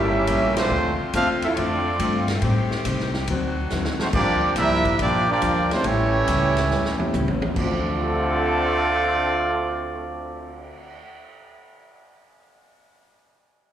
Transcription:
Already playing: G1 A2 C#3 G3 A3 A#3 C#4 E4 G4 A#4 E5
0.27 A#1 A2 G3 A#3 C#4, kick, hi-hat pedal, ride
0.56 F3 A3 C4 D4 F4 C5, snare, ride
0.70 D2 D3 A3 C4 F4
0.99 muted upright bass stroke
1.13 E2 D3 A3 C4 D4 F4 A4 C5 F5, kick, hi-hat pedal, ride
1.42 C4 E4 F4 A4 E5, ride
1.54 F2 D3 F3 A3 D4 C#5, kick, ride
1.58 C4 F4 A4 D5
1.99 G2 D3 A3 C4 F4, kick, hi-hat pedal, ride
2.28 snare, ride
2.42 A2 D#3 G3 C4 D#4 G4, kick, ride
2.71 snare
2.85 C2 A2 G3 C4 D#4, kick, hi-hat pedal, ride
3.00 snare
3.14 snare
3.27 D2 D3 D#3 F#3 C4 D4 D#4 F#4, kick, ride
3.70 D#2 D3 F#3 C4 D#4, snare, hi-hat pedal
3.85 snare
4.00 F#3 A3 C4 D#4 F#4 C5, snare
4.12 D2 G2 F3 G3 A#3 C4 D4 F4 G4 A#4 D5, kick, crash
4.56 C2 G2 F3 A#3 D4 E4 G4 A#4 E5, kick, snare, hi-hat pedal, ride
4.85 muted upright bass stroke, kick, ride
4.98 A#1 G2 F3 A#3 D4, kick, ride
5.02 A#3 F4 G4 D5
5.28 F3 A#3 D4 F4 D5
5.32 G4
5.40 D2 G2 F3 A#3 D4, kick, hi-hat pedal, ride
5.71 A3 C4 C#4 D4 E4 F4 G4 C5, snare, ride
5.84 A1 A2 E3 G3 A3 C#4 E4 G4 C#5, kick, ride
6.27 C#2 A2 G3 C#4 E4, kick, hi-hat pedal, ride
6.57 snare, ride
6.71 E2 A2 G3 C#4 E4, snare
6.85 snare
6.98 A3 C#4 E4 G4, high tom
7.13 C#2 A2 G3 C#4 E4, hi-hat pedal, high tom
7.28 A1, high tom
7.42 G1, high tom
7.50 D2 D3
7.56 D2 D3 F3 A3 C4 F4 A4 D5, kick, crash
7.61 C4 F4
7.85 cymbal swell
8.00 G4
8.07 C5
8.16 E5
8.35 C6
8.45 E6
8.57 G6

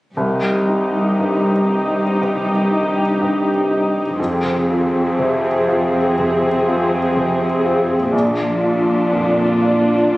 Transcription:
0.16 C2 C3 D#4 G4
0.42 G3
0.68 C4 D#4
0.93 D#4
1.19 G2 G4
1.45 C5
1.71 D#4 G4
1.95 C4
2.21 G2 C3
2.46 G3
2.70 C4 D#4
2.95 D#4
3.18 G2 G4
3.43 C5
3.67 D#4 G4
3.93 C4
4.18 F2 C4 G#4
4.42 C3
4.67 C4 F4
4.92 F4
5.17 C3 G#4
5.42 C5
5.67 F4 G#4
5.91 C4
6.16 F2 C3
6.41 C3
6.65 C4 F4
6.91 F4
7.15 C3 G#4
7.40 C5
7.65 F4 G#4
7.90 C4
8.12 A#1 A#2 D4 F4
8.40 F3
8.63 D4 F4
8.89 F4
9.12 F2 A#4
9.39 D5
9.62 F4 A#4
9.90 D4
10.12 F2 A#2

